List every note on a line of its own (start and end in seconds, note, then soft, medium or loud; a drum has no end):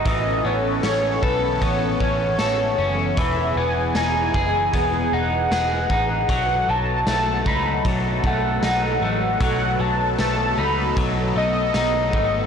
0.00 0.44 A3 medium
0.00 0.13 D#4 medium
0.00 0.13 F#4 medium
0.05 0.40 A1 loud
0.05 3.17 E3 medium
0.05 6.25 E3 medium
0.05 12.46 B3 medium
0.05 3.14 C#4 medium
0.05 3.14 A4 medium
0.05 0.48 D#5 loud
0.05 kick loud
0.05 closed hi-hat medium
0.44 0.79 A1 medium
0.44 1.61 B3 medium
0.44 0.84 C#5 medium
0.83 1.18 A1 loud
0.83 1.99 C#4 medium
0.83 1.25 C#5 medium
0.83 snare loud
0.83 closed hi-hat medium
0.83 tambourine medium
1.23 1.57 B1 medium
1.23 2.39 A4 medium
1.23 1.64 B4 medium
1.23 kick medium
1.62 1.96 A1 medium
1.62 3.57 B3 medium
1.62 2.01 C#5 medium
1.62 kick medium
1.62 closed hi-hat medium
2.00 2.35 A1 medium
2.00 2.77 C#4 medium
2.00 3.20 C#5 medium
2.00 kick medium
2.39 2.74 A1 medium
2.39 3.25 A4 medium
2.39 snare loud
2.39 closed hi-hat medium
2.39 tambourine medium
2.78 3.13 F#1 medium
2.78 3.25 C#4 medium
3.17 3.52 E1 loud
3.17 6.29 E3 medium
3.17 6.27 G#4 medium
3.17 3.58 E5 loud
3.17 kick loud
3.17 closed hi-hat medium
3.56 3.90 E1 loud
3.56 4.73 B3 medium
3.56 3.96 G#5 loud
3.95 4.29 E1 medium
3.95 5.13 D#4 medium
3.95 5.15 G#5 loud
3.95 snare loud
3.95 closed hi-hat medium
3.95 tambourine medium
4.34 4.69 F#1 medium
4.34 5.51 G#4 medium
4.34 kick loud
4.73 5.08 E1 loud
4.73 7.08 B3 medium
4.73 kick loud
4.73 closed hi-hat medium
5.12 5.46 E1 loud
5.12 5.90 D#4 medium
5.12 6.30 F#5 loud
5.51 5.85 E1 medium
5.51 6.37 G#4 medium
5.51 snare loud
5.51 closed hi-hat medium
5.51 tambourine medium
5.90 6.24 A1 medium
5.90 7.11 D#4 medium
5.90 kick loud
6.28 6.63 B1 loud
6.28 12.46 F#3 medium
6.28 6.68 F#3 medium
6.28 9.38 A4 medium
6.28 6.71 F#5 loud
6.28 kick loud
6.28 closed hi-hat medium
6.69 7.03 B1 loud
6.69 7.84 F#3 medium
6.69 7.07 A5 loud
7.07 7.41 B1 loud
7.07 8.25 A3 medium
7.07 7.49 A5 loud
7.07 snare loud
7.07 closed hi-hat medium
7.07 tambourine medium
7.46 7.80 C#2 medium
7.46 8.63 D#4 medium
7.46 7.85 B5 loud
7.46 kick medium
7.85 8.19 B1 loud
7.85 9.40 F#3 medium
7.85 kick medium
7.85 closed hi-hat medium
8.24 8.58 B1 loud
8.24 9.02 A3 medium
8.24 9.38 F#5 medium
8.24 kick medium
8.62 8.97 B1 medium
8.62 10.57 D#4 medium
8.62 snare loud
8.62 closed hi-hat medium
8.62 tambourine medium
9.02 9.36 A1 medium
9.02 10.19 A3 medium
9.41 9.75 B1 loud
9.41 9.78 F#3 medium
9.41 12.46 A4 medium
9.41 9.82 F#5 loud
9.41 kick loud
9.41 closed hi-hat medium
9.80 10.14 B1 loud
9.80 10.96 F#3 medium
9.80 10.19 A5 medium
10.19 10.53 B1 loud
10.19 11.35 A3 medium
10.19 10.60 A5 loud
10.19 snare loud
10.19 closed hi-hat medium
10.19 tambourine medium
10.58 10.92 C#2 medium
10.58 11.74 D#4 medium
10.58 10.97 B5 medium
10.97 11.31 B1 loud
10.97 12.46 F#3 medium
10.97 kick loud
10.97 closed hi-hat medium
11.36 11.70 B1 medium
11.36 12.14 A3 medium
11.36 12.46 D#5 loud
11.74 12.09 B1 loud
11.74 12.46 D#4 medium
11.74 snare loud
11.74 closed hi-hat medium
11.74 tambourine medium
12.13 12.46 G#1 medium
12.13 12.46 A3 medium
12.13 kick loud